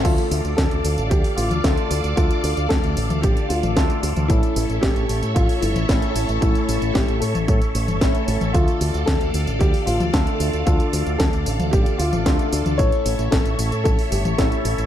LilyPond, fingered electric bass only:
\new Staff \with { instrumentName = "Fingered electric bass" } { \clef bass \time 4/4 \key d \minor \tempo 4 = 113 d,16 r16 d,16 d,16 d,16 d,16 d,16 a,,16 d,16 r16 a,,16 d,16 d,16 r16 d,16 d,16 | d,16 r16 d,16 d,16 d,16 d,16 a,,16 d,16 a,,16 r16 d,16 a,,16 d,16 r16 d,16 d,16 | a,,16 r16 a,,16 a,,16 a,,16 a,,16 a,,16 a,16 a,,16 r16 g,,16 a,,16 a,,16 r16 a,,16 a,,16 | a,,16 r16 a,,16 a,,16 a,,16 a,,16 a,16 a,,16 a,16 r16 a,,16 g,,16 a,,16 r16 a,,16 a,,16 |
d,16 r16 d,16 d,16 d,16 d,16 d,16 a,,16 d,16 r16 a,,16 d,16 d,16 r16 d,16 d,16 | d,16 r16 d,16 d,16 d,16 d,16 a,,16 d,16 a,,16 r16 d,16 a,,16 d,16 r16 d,16 d,16 | a,,16 r16 a,,16 a,,16 a,,16 a,,16 a,,16 a,16 a,,16 r16 g,,16 a,,16 a,,16 r16 a,,16 a,,16 | }